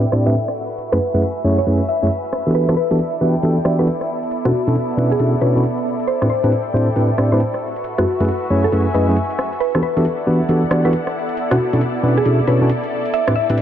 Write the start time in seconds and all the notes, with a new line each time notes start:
Already playing: E4 A4 D5 E5 G5
0.12 A2 C4 D4 E4 G4 D5, cross-stick, closed hi-hat
0.26 A2 C4 D4 E4 G4 B4 E5
0.34 closed hi-hat
0.48 cross-stick, closed hi-hat
0.56 F#4
0.62 B4
0.70 closed hi-hat
0.78 closed hi-hat
0.92 F#2 A3 C#4 E4 G#4 B4, cross-stick
1.12 F#2 A3 C#4 E4 G#4 B4 E5 G#5, closed hi-hat
1.22 closed hi-hat
1.45 F#2 A3 C#4 E4 G#4 C#5
1.58 C#5
1.66 F#2 A3 C#4 E4 G#4 B4, closed hi-hat
1.89 E5, closed hi-hat
2.03 F#2 A3 C#4 E4 G#4 C#5
2.11 closed hi-hat
2.25 closed hi-hat
2.33 cross-stick
2.47 E3 B3 D4 F#4 G4 A4, closed hi-hat
2.55 E4 B4, closed hi-hat
2.67 E3 B3 D4 F#4 G4 A4, cross-stick
2.77 B4
2.88 E3 B3 D4 F#4 G4 A4 D5, closed hi-hat
2.99 closed hi-hat
3.21 E3 B3 D4 F#4 G4 B4 G5
3.43 E3 B3 D4 F#4 G4 A4, closed hi-hat
3.65 E3 B3 D4 F#4 G4 D5, cross-stick, closed hi-hat
3.79 E3 B3 D4 F#4 G4 A4 B4
3.87 closed hi-hat
4.01 cross-stick, closed hi-hat
4.09 B3
4.23 closed hi-hat
4.31 closed hi-hat
4.45 B2 C#4 D4 E4 F#4 A4, cross-stick
4.67 B2 C#4 D4 E4 F#4 A4, closed hi-hat
4.75 closed hi-hat
4.91 F#5
4.97 B2 C#4 D4 E4 F#4 B4
5.11 G#4
5.19 B2 C#4 D4 E4 F#4 A4, closed hi-hat
5.41 B2 C#4 D4 E4 F#4 B4 C#5, closed hi-hat
5.56 B2 C#4 D4 E4 F#4 A4
5.64 closed hi-hat
5.78 closed hi-hat
6.00 closed hi-hat
6.07 C5, closed hi-hat
6.22 A2 C4 D4 E4 G4 B4, cross-stick
6.29 C5 G5
6.44 A2 C4 D4 E4 G4 B4, closed hi-hat
6.52 closed hi-hat
6.74 A2 C4 D4 E4 G4 C5
6.96 A2 C4 D4 E4 G4 B4, closed hi-hat
7.18 A2 C4 D4 E4 G4 D5, cross-stick, closed hi-hat
7.32 A2 C4 D4 E4 G4 B4 C5
7.40 closed hi-hat
7.54 cross-stick, closed hi-hat
7.62 F#4
7.71 B4
7.76 closed hi-hat
7.84 closed hi-hat
7.98 F#2 A3 C#4 E4 F#4 G#4 B4, cross-stick
8.09 E5
8.20 F#2 A3 C#4 E4 G#4 B4, closed hi-hat
8.28 closed hi-hat
8.50 F#2 A3 C#4 E4 G#4 C#5 G#5
8.64 A4
8.72 F#2 A3 C#4 E4 G#4 B4, closed hi-hat
8.94 F#2 A3 C#4 E4 G#4 B4 D#5, closed hi-hat
9.09 F#2 A3 C#4 E4 G#4 B4
9.17 closed hi-hat
9.31 closed hi-hat
9.39 cross-stick
9.53 closed hi-hat
9.60 E4 B4 E5, closed hi-hat
9.75 E3 B3 D4 F#4 G4 A4, cross-stick
9.83 A4 B4
9.97 E3 B3 D4 F#4 G4 A4, closed hi-hat
10.01 F#5, closed hi-hat
10.09 D5
10.27 E3 B3 D4 F#4 G4 B4
10.49 E3 B3 D4 F#4 G4 A4, closed hi-hat
10.71 E3 B3 D4 F#4 G4 D5, cross-stick, closed hi-hat
10.85 E3 B3 D4 F#4 G4 A4 B4
10.93 closed hi-hat
11.07 cross-stick, closed hi-hat
11.15 B3
11.29 closed hi-hat
11.37 closed hi-hat
11.51 B2 C#4 D4 E4 F#4 A4, cross-stick
11.73 B2 C#4 D4 E4 F#4 A4, closed hi-hat
11.81 closed hi-hat
12.03 B2 C#4 D4 E4 F#4 B4
12.17 G#4
12.25 B2 C#4 D4 E4 F#4 A4, closed hi-hat
12.47 B2 C#4 D4 E4 F#4 B4 C#5, closed hi-hat
12.61 B2 C#4 D4 E4 F#4 A4
12.69 closed hi-hat
12.84 closed hi-hat
13.06 closed hi-hat
13.14 E5, closed hi-hat
13.28 A2 C4 D4 E4 G4 B4, cross-stick
13.36 E5
13.42 G5
13.50 A2 C4 D4 E4 G4 B4, closed hi-hat
13.58 closed hi-hat